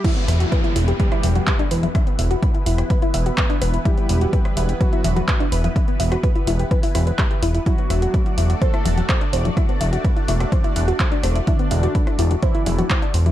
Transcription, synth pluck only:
\new Staff \with { instrumentName = "Synth pluck" } { \time 4/4 \key e \minor \tempo 4 = 126 e'16 b16 e''16 fis'16 b'16 e'16 e'16 g'16 b'16 e'16 e''16 fis'16 b'16 d'16 b'16 e'16 | e'16 b16 e''16 fis'16 b'16 e'16 e'16 g'16 b'16 e'16 e''16 fis'16 b'16 d'16 b'16 e'16 | e'16 b16 e''16 fis'16 b'16 e'16 e'16 g'16 b'16 e'16 e''16 fis'16 b'16 d'16 b'16 e'16 | e'16 b16 e''16 fis'16 b'16 e'16 e'16 g'16 b'16 e'16 e'16 b'16 g'16 g'16 e'16 e'16 |
e'16 b16 e''16 fis'16 b'16 e'16 e'16 fis'16 c''16 e'16 e''16 fis'16 c''16 d'16 c''16 e'16 | e'16 b16 e''16 fis'16 b'16 e'16 e'16 fis'16 c''16 e'16 e''16 fis'16 c''16 d'16 c''16 e'16 | e'16 b16 e''16 fis'16 b'16 e'16 e'16 fis'16 c''16 e'16 e''16 fis'16 c''16 d'16 c''16 e'16 | }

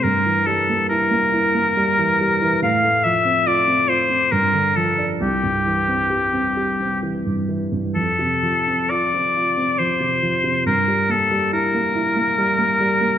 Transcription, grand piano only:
\new Staff \with { instrumentName = "Grand piano" } { \clef bass \time 3/4 \key f \major \tempo 4 = 69 g,16 e16 g16 bes16 e'16 bes16 e'16 bes16 g16 e16 g16 e16 | a,16 a16 f16 c'16 f'16 c'16 f'16 c'16 g,16 d16 f16 d'16 | c,16 g,16 e16 c'16 g'16 c'16 g'16 c'16 e16 g,16 e16 g,16 | f,16 c16 f16 c'16 f'16 c'16 f'16 c'16 f16 c16 f16 c16 |
g,16 g16 bes16 g16 e'16 bes16 e'16 bes16 g16 bes16 g16 bes16 | }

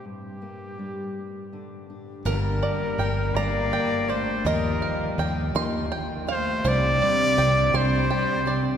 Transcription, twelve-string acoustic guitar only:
\new Staff \with { instrumentName = "Twelve-string acoustic guitar" } { \time 6/8 \key g \minor \tempo 4. = 55 r2. | <g, d g bes d' g'>4 <g bes d' g'>8 <g, d g bes d' g'>4 <g d' g'>8 | <ees f bes ees' g'>4 <f bes ees' g'>8 <ees f bes ees' g'>4 <ees' g'>8 | <c g c' d' g'>4 <g c' d' g'>8 <c g c' d' g'>4 <c' d' g'>8 | }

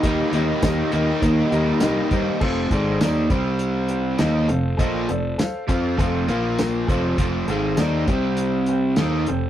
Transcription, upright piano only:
\new Staff \with { instrumentName = "Upright piano" } { \time 4/4 \key f \mixolydian \tempo 4 = 101 <g' bes' ees''>8 <g' bes' ees''>8 <g' bes' ees''>8 <g' bes' ees''>8 <g' bes' ees''>8 <g' bes' ees''>8 <g' bes' ees''>8 <g' bes' c''>8 | <a' c'' f''>8 <a' c'' d''>8 <a' c'' d''>8 <g' c'' g''>4 <g' c'' g''>8 <a' c'' f''>8 <a' c'' f''>8 | <a' c'' ees''>8 <a' c'' d''>8 <a' c'' f''>8 <a' c'' f''>8 <a' c'' f''>8 <f' bes' f''>4 <a' c'' f''>8~ | <a' c'' f''>8 <a' c'' f''>8 <a' c'' d''>8 <g' c'' g''>4 <g' c'' g''>8 <a' c'' f''>8 <a' c'' g''>8 | }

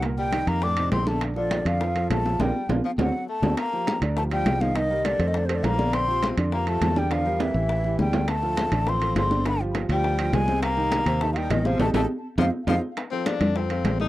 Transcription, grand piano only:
\new Staff \with { instrumentName = "Grand piano" } { \time 4/4 \key bes \major \tempo 4 = 204 <bes, bes bes'>4 <ees ees' g'>4 <a, a a'>8 <c c' ees'>4 <d d' d''>8~ | <d d' d''>8 <f f' a'>4 <d d' d''>8 <f f' a'>8 <f f' a'>4 <f f' a'>8 | <bes d' f'>8 r8 <bes d' f'>8 r8 <c' d' fis'>8 r4 <c' d' fis'>8 | \key g \minor r8 <f f' g'>4 <d d' d''>8 <f f' g'>8 <f f' g'>4 <ees ees' ees''>8 |
<ees ees' ees''>8 <g g' bes'>4 <a a' c''>4 <a a' c''>4 <d d' d''>8~ | <d d' d''>8 <f f' g'>4 <d d' d''>8 <f f' g'>8 <f f' g'>4 <d d' d''>8 | <d d' d''>8 <g g' bes'>4 <e e' g'>4 <e e' g'>4 <d d' d''>8~ | <d d' d''>8 <f f' a'>4 <d d' d''>8 <f f' a'>8 <f f' a'>4 <d d' d''>8 |
<d d' d''>8 <f f' g'>4 <f f' g'>4 <f f' g'>4 <c c' c''>8~ | <c c' c''>8 <ees ees' g'>4 <c c' c''>8 <ees ees' g'>8 <ees ees' g'>4 <c c' c''>8 | <ees' g' a'>8 <ees' g' a'>8 r4 <c' ees' f'>8 r8 <c' ees' f'>8 r8 | \key f \mixolydian r8 <f f' a'>4 <d d' d''>8 <f f' a'>8 <f f' a'>4 <g g' a'>8 | }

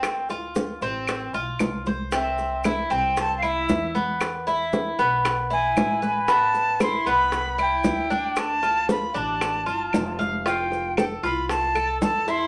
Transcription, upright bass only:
\new Staff \with { instrumentName = "Upright bass" } { \clef bass \time 4/4 \key d \dorian \tempo 4 = 115 d,4. a,,4 b,,8 c,4~ | c,4. c,4. e,4~ | e,4. b,,4. a,,4~ | a,,4. c,4. d,4~ |
d,4. a,,4 g,,8 f,,4~ | f,,4. c,4. e,4 | }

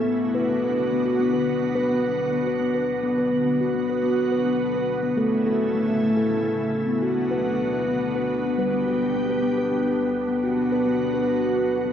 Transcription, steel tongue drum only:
\new Staff \with { instrumentName = "Steel tongue drum" } { \time 3/4 \key b \minor \tempo 4 = 106 << { b2. | b2. | r2. | a2. |
b2. | g2. | b2. | } \\ { r8 b'16 b16 b'8 b16 fis'16 b16 b'8 b16 | b'16 b16 b'8 b16 b'16 b16 b'8 b16 b'16 b16 | b16 fis'16 b16 b'16 b8 b'16 b8 b'8 b16 | a'16 a16 a'8 a16 a'16 a16 a'16 a16 a'16 a8 |
r16 fis'16 b16 b'16 b8 b'16 b8 b'8 b16 | b'16 b16 b'8 b16 b'16 b16 b'16 b16 b'16 b8 | r16 fis'16 b16 b'16 b8 b'16 b8 b'8 b16 | } >> }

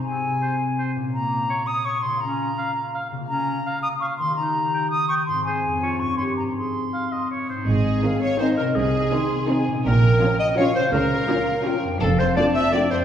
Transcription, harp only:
\new Staff \with { instrumentName = "Harp" } { \time 3/4 \key aes \major \tempo 4 = 166 <c c' ees' aes'>2. | <bes, des' f' des''>2. | <des bes f' f''>2. | <des bes f' f''>2. |
<ees bes g' ees''>2. | <aes, c' aes' ees''>4 <f, des' aes' des''>4 <g, des' ees' bes'>4 | <aes, c' ees' aes'>2. | <aes, c' ees' aes'>2. |
<c c' ees' aes'>2. | <bes, des' f' des''>2. | <des des' f' des''>2. | \key d \dorian <f, d' f' a'>2. | }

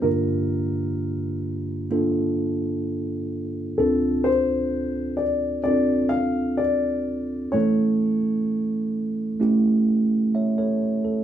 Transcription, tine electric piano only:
<<
  \new Staff \with { instrumentName = "Tine electric piano" } { \time 4/4 \key d \minor \tempo 4 = 64 << { r1 | r1 | r2. <cis'' e''>16 <a' cis''>8 a'16 | } \\ { <bes d' f' g'>2 <bes d' f' a'>2 | <c' d' f' a'>2 <c' d' f' a'>2 | <a cis' e' a'>2 <a cis' e' g'>2 | } >> }
  \new Staff \with { instrumentName = "Tine electric piano" } { \clef bass \time 4/4 \key d \minor <g, d>1 | <d, a,>1 | <a, e>1 | }
>>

